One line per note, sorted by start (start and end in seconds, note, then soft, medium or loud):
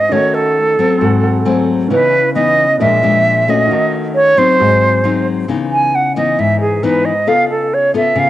0.00 0.14 F4 medium
0.00 0.14 C5 soft
0.00 0.10 D#5 medium
0.00 0.14 D#5 medium
0.09 0.78 D#3 medium
0.09 0.56 A3 soft
0.09 0.98 C#4 soft
0.09 0.56 C#4 soft
0.09 0.99 F#4 soft
0.09 0.56 F#4 medium
0.09 1.00 A4 soft
0.09 0.36 C#5 medium
0.15 1.01 D#5 medium
0.34 1.68 A4 medium
0.79 1.42 F#3 medium
0.79 1.43 C4 medium
0.98 1.88 G#2 medium
0.98 1.87 C4 medium
0.98 1.88 F#4 medium
1.02 1.89 A4 soft
1.02 1.22 F#5 medium
1.24 1.44 F#5 medium
1.45 1.87 F#3 medium
1.45 1.87 A3 medium
1.45 1.87 C4 medium
1.45 1.87 G#5 soft
1.88 2.77 C#3 medium
1.88 2.19 E3 medium
1.88 2.20 B3 soft
1.88 2.77 C#4 medium
1.88 2.19 D#4 medium
1.88 2.78 E4 soft
1.88 2.33 B4 medium
1.93 2.79 B4 soft
1.93 2.80 D#5 medium
2.35 2.65 E3 medium
2.35 2.66 B3 medium
2.35 2.66 D#4 medium
2.35 2.76 D#5 loud
2.78 3.67 A#2 medium
2.78 2.99 F3 medium
2.78 2.99 G#3 medium
2.78 3.66 D4 soft
2.78 2.99 D4 medium
2.78 3.67 G#4 soft
2.78 3.68 A#4 soft
2.78 3.51 E5 loud
2.84 3.70 F4 medium
3.03 3.44 F3 medium
3.03 3.44 G#3 medium
3.03 3.44 D4 medium
3.48 4.33 A3 medium
3.48 4.33 C#4 medium
3.48 4.34 F#4 medium
3.48 3.93 D#5 medium
3.67 4.37 D#3 medium
3.67 4.56 C#4 soft
3.67 4.57 F#4 soft
3.71 4.58 A4 soft
3.71 4.59 D#5 soft
4.15 4.40 C#5 loud
4.37 5.00 F#3 medium
4.37 5.00 C4 medium
4.37 5.01 D#4 medium
4.37 5.27 C5 loud
4.56 5.46 G#2 medium
4.56 5.45 C4 soft
4.56 5.46 F#4 soft
4.56 5.47 G#4 soft
4.62 5.48 D#5 medium
5.04 5.45 F#3 medium
5.04 5.45 C4 medium
5.04 5.45 D#4 medium
5.48 6.35 C#3 medium
5.48 5.93 E3 soft
5.48 5.93 B3 medium
5.48 5.93 D#4 medium
5.72 5.97 G#5 medium
5.95 6.16 F#5 medium
6.16 6.79 E3 medium
6.16 6.79 B3 medium
6.16 6.79 D#4 medium
6.16 6.41 D#5 medium
6.39 7.25 G#2 medium
6.39 6.60 E5 medium
6.61 6.85 G#4 medium
6.83 7.11 E3 medium
6.83 7.12 B3 medium
6.83 7.12 D#4 medium
6.83 7.07 B4 medium
7.05 7.30 D#5 medium
7.27 8.14 C#3 medium
7.27 7.71 B3 soft
7.27 7.71 F4 soft
7.27 7.71 A4 medium
7.27 7.49 F5 medium
7.50 7.75 A4 medium
7.74 7.95 C#5 medium
7.94 8.30 B3 medium
7.94 8.30 F4 medium
7.94 8.30 A4 medium
7.94 8.21 E5 medium
8.16 8.30 C#3 medium
8.16 8.30 F5 medium